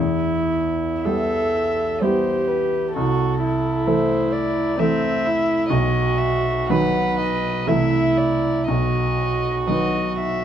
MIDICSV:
0, 0, Header, 1, 5, 480
1, 0, Start_track
1, 0, Key_signature, 1, "minor"
1, 0, Tempo, 1079137
1, 464, Tempo, 972447
1, 944, Tempo, 921659
1, 1435, Time_signature, 3, 2, 24, 8
1, 2864, Tempo, 996678
1, 5148, End_track
2, 0, Start_track
2, 0, Title_t, "Violin"
2, 0, Program_c, 0, 40
2, 456, Note_on_c, 0, 76, 33
2, 941, Note_on_c, 0, 72, 34
2, 949, Note_off_c, 0, 76, 0
2, 1184, Note_on_c, 0, 71, 28
2, 1192, Note_off_c, 0, 72, 0
2, 1419, Note_off_c, 0, 71, 0
2, 1422, Note_on_c, 0, 69, 30
2, 1912, Note_on_c, 0, 72, 33
2, 1920, Note_off_c, 0, 69, 0
2, 2145, Note_on_c, 0, 74, 34
2, 2153, Note_off_c, 0, 72, 0
2, 2391, Note_on_c, 0, 76, 42
2, 2399, Note_off_c, 0, 74, 0
2, 2853, Note_off_c, 0, 76, 0
2, 2856, Note_on_c, 0, 75, 37
2, 3093, Note_on_c, 0, 76, 38
2, 3100, Note_off_c, 0, 75, 0
2, 3340, Note_off_c, 0, 76, 0
2, 3343, Note_on_c, 0, 78, 32
2, 3575, Note_off_c, 0, 78, 0
2, 3581, Note_on_c, 0, 75, 34
2, 3817, Note_on_c, 0, 76, 35
2, 3825, Note_off_c, 0, 75, 0
2, 4055, Note_on_c, 0, 74, 32
2, 4062, Note_off_c, 0, 76, 0
2, 4295, Note_off_c, 0, 74, 0
2, 4297, Note_on_c, 0, 75, 31
2, 4721, Note_off_c, 0, 75, 0
2, 4779, Note_on_c, 0, 75, 29
2, 5007, Note_off_c, 0, 75, 0
2, 5023, Note_on_c, 0, 76, 31
2, 5148, Note_off_c, 0, 76, 0
2, 5148, End_track
3, 0, Start_track
3, 0, Title_t, "Viola"
3, 0, Program_c, 1, 41
3, 0, Note_on_c, 1, 64, 38
3, 470, Note_on_c, 1, 69, 45
3, 477, Note_off_c, 1, 64, 0
3, 947, Note_on_c, 1, 67, 38
3, 955, Note_off_c, 1, 69, 0
3, 1436, Note_off_c, 1, 67, 0
3, 1439, Note_on_c, 1, 66, 40
3, 1672, Note_off_c, 1, 66, 0
3, 1680, Note_on_c, 1, 64, 41
3, 2381, Note_off_c, 1, 64, 0
3, 2390, Note_on_c, 1, 60, 50
3, 2628, Note_on_c, 1, 64, 45
3, 2635, Note_off_c, 1, 60, 0
3, 2862, Note_on_c, 1, 66, 47
3, 2869, Note_off_c, 1, 64, 0
3, 3346, Note_on_c, 1, 71, 45
3, 3354, Note_off_c, 1, 66, 0
3, 3813, Note_on_c, 1, 64, 47
3, 3820, Note_off_c, 1, 71, 0
3, 4300, Note_on_c, 1, 66, 38
3, 4308, Note_off_c, 1, 64, 0
3, 5148, Note_off_c, 1, 66, 0
3, 5148, End_track
4, 0, Start_track
4, 0, Title_t, "Grand piano"
4, 0, Program_c, 2, 0
4, 0, Note_on_c, 2, 40, 28
4, 63, Control_c, 2, 64, 127
4, 453, Note_off_c, 2, 40, 0
4, 473, Note_on_c, 2, 59, 20
4, 477, Note_on_c, 2, 64, 20
4, 477, Note_on_c, 2, 67, 24
4, 929, Note_off_c, 2, 59, 0
4, 931, Note_off_c, 2, 64, 0
4, 931, Note_off_c, 2, 67, 0
4, 951, Note_on_c, 2, 59, 24
4, 953, Note_on_c, 2, 64, 22
4, 956, Note_on_c, 2, 67, 24
4, 1418, Note_off_c, 2, 59, 0
4, 1418, Note_off_c, 2, 64, 0
4, 1420, Note_off_c, 2, 67, 0
4, 1436, Note_on_c, 2, 36, 36
4, 1445, Control_c, 2, 64, 0
4, 1515, Control_c, 2, 64, 127
4, 1900, Note_off_c, 2, 36, 0
4, 1910, Note_on_c, 2, 57, 25
4, 1913, Note_on_c, 2, 64, 25
4, 1914, Note_on_c, 2, 69, 28
4, 2370, Note_off_c, 2, 57, 0
4, 2372, Note_off_c, 2, 64, 0
4, 2372, Note_off_c, 2, 69, 0
4, 2390, Note_on_c, 2, 57, 26
4, 2393, Note_on_c, 2, 64, 28
4, 2395, Note_on_c, 2, 69, 26
4, 2843, Note_off_c, 2, 57, 0
4, 2845, Note_off_c, 2, 64, 0
4, 2846, Note_off_c, 2, 69, 0
4, 2863, Note_on_c, 2, 35, 37
4, 2875, Control_c, 2, 64, 0
4, 2956, Control_c, 2, 64, 127
4, 3332, Note_off_c, 2, 35, 0
4, 3343, Note_on_c, 2, 54, 27
4, 3345, Note_on_c, 2, 63, 24
4, 3349, Note_on_c, 2, 71, 28
4, 3795, Note_off_c, 2, 54, 0
4, 3796, Note_off_c, 2, 63, 0
4, 3798, Note_off_c, 2, 71, 0
4, 3812, Note_on_c, 2, 36, 31
4, 3813, Note_on_c, 2, 57, 23
4, 3813, Note_on_c, 2, 64, 25
4, 3819, Note_on_c, 2, 76, 26
4, 3826, Control_c, 2, 64, 0
4, 3909, Control_c, 2, 64, 127
4, 4277, Note_off_c, 2, 57, 0
4, 4277, Note_off_c, 2, 64, 0
4, 4280, Note_off_c, 2, 76, 0
4, 4282, Note_off_c, 2, 36, 0
4, 4298, Note_on_c, 2, 35, 31
4, 4307, Control_c, 2, 64, 0
4, 4387, Control_c, 2, 64, 127
4, 4764, Note_off_c, 2, 35, 0
4, 4785, Note_on_c, 2, 54, 20
4, 4786, Note_on_c, 2, 63, 19
4, 4788, Note_on_c, 2, 71, 23
4, 5148, Note_off_c, 2, 54, 0
4, 5148, Note_off_c, 2, 63, 0
4, 5148, Note_off_c, 2, 71, 0
4, 5148, End_track
5, 0, Start_track
5, 0, Title_t, "Cello"
5, 0, Program_c, 3, 42
5, 471, Note_on_c, 3, 55, 28
5, 834, Note_off_c, 3, 55, 0
5, 942, Note_on_c, 3, 55, 31
5, 1316, Note_off_c, 3, 55, 0
5, 1910, Note_on_c, 3, 52, 34
5, 2275, Note_off_c, 3, 52, 0
5, 2387, Note_on_c, 3, 52, 37
5, 2746, Note_off_c, 3, 52, 0
5, 3350, Note_on_c, 3, 51, 36
5, 3704, Note_off_c, 3, 51, 0
5, 3808, Note_on_c, 3, 52, 33
5, 4179, Note_off_c, 3, 52, 0
5, 4776, Note_on_c, 3, 51, 28
5, 5148, Note_off_c, 3, 51, 0
5, 5148, End_track
0, 0, End_of_file